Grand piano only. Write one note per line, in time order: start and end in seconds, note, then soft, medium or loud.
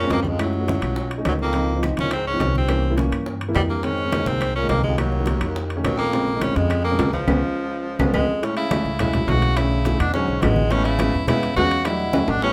0.03 0.28 G#3 medium
0.03 0.28 C4 medium
0.03 0.28 C#4 medium
0.39 0.54 G#3 medium
0.39 0.54 A3 medium
0.39 0.54 E4 medium
0.60 0.66 G#3 medium
0.60 0.65 A3 medium
0.60 0.66 F#4 medium
0.67 0.96 G#3 medium
0.67 0.96 A3 medium
0.67 0.96 E4 medium
1.18 1.43 A3 medium
1.18 1.43 C#4 medium
1.18 1.43 D#4 medium
1.53 1.69 F3 medium
1.53 1.69 C4 medium
1.53 1.69 D#4 medium
1.75 1.81 F3 medium
1.75 1.81 C4 medium
1.75 1.81 D#4 medium
1.83 2.18 F3 medium
1.83 2.18 C4 medium
1.83 2.18 D#4 medium
2.33 2.58 F3 medium
2.33 2.58 C4 medium
2.33 2.58 D#4 medium
2.69 2.84 E3 medium
2.69 2.84 A#3 medium
2.69 2.84 C#4 medium
2.90 2.95 E3 medium
2.90 2.95 A#3 medium
2.90 2.96 E4 medium
2.97 3.33 E3 medium
2.97 3.33 A#3 medium
2.97 3.32 C#4 medium
3.48 3.74 E3 medium
3.48 3.73 A#3 medium
3.48 3.74 E4 medium
3.84 3.99 D#3 medium
3.84 3.99 G#3 medium
3.84 3.99 C4 medium
4.05 4.11 D#3 medium
4.05 4.10 G#3 soft
4.05 4.10 C4 medium
4.13 4.48 D#3 medium
4.13 4.48 G#3 medium
4.13 4.48 A#3 medium
4.62 4.88 D#3 medium
4.62 4.88 G#3 medium
4.62 4.88 D#4 medium
4.97 5.13 D#3 medium
4.97 5.13 F#3 medium
4.97 5.13 A#3 medium
5.19 5.25 D#3 medium
5.19 5.25 F#3 medium
5.19 5.25 A#3 medium
5.27 5.56 D#3 medium
5.27 5.56 F#3 medium
5.27 5.56 A#3 medium
5.77 6.02 D#3 medium
5.77 6.02 A3 medium
5.77 6.02 C#4 medium
6.13 6.29 C#3 medium
6.13 6.29 G#3 medium
6.13 6.28 C4 medium
6.34 6.40 C#3 medium
6.34 6.40 G#3 soft
6.34 6.40 D#4 medium
6.42 6.77 C#3 medium
6.42 6.77 G#3 medium
6.42 6.77 C4 medium
6.91 7.17 C#3 medium
6.91 7.17 G#3 medium
6.91 7.17 C#4 medium
7.28 7.37 G#3 medium
7.28 7.37 B3 medium
7.28 7.37 C#4 medium
8.00 8.09 G#3 medium
8.00 8.09 B3 medium
8.00 8.09 C#4 medium
8.13 8.23 G#3 medium
8.13 8.23 B3 medium
8.13 8.23 C#4 medium
8.42 8.62 G#3 medium
8.42 8.62 A3 medium
8.42 8.62 E4 medium
8.71 8.91 G#3 medium
8.71 8.91 A3 medium
8.71 8.91 C#4 medium
9.00 9.20 G#3 medium
9.00 9.20 A3 medium
9.00 9.20 E4 medium
9.29 9.49 G#3 medium
9.29 9.49 A3 medium
9.29 9.49 E4 medium
9.58 9.78 D3 medium
9.58 9.78 E3 medium
9.58 9.78 A3 medium
9.58 9.78 C#4 medium
9.87 10.06 D3 medium
9.87 10.06 E3 medium
9.87 10.06 A3 medium
9.87 10.06 C#4 medium
10.15 10.35 D3 medium
10.15 10.35 F#3 medium
10.15 10.35 G#3 medium
10.15 10.35 C#4 medium
10.43 10.63 D3 medium
10.43 10.63 F#3 medium
10.43 10.63 G#3 medium
10.43 10.63 C#4 medium
10.72 10.92 G#3 medium
10.72 10.92 B3 medium
10.72 10.91 C#4 medium
10.99 11.20 G#3 medium
10.99 11.20 B3 medium
10.99 11.20 C#4 medium
11.28 11.48 G#3 medium
11.28 11.48 B3 medium
11.28 11.48 E4 loud
11.57 11.77 G#3 medium
11.57 11.77 B3 medium
11.57 11.77 C#4 medium
11.85 12.05 F#3 medium
11.85 12.05 G3 medium
11.85 12.05 A3 medium
11.85 12.05 D4 medium
12.14 12.34 F#3 medium
12.14 12.34 G3 medium
12.14 12.34 A3 medium
12.14 12.34 C#4 medium
12.42 12.53 G3 medium
12.42 12.53 B3 medium
12.42 12.53 C#4 medium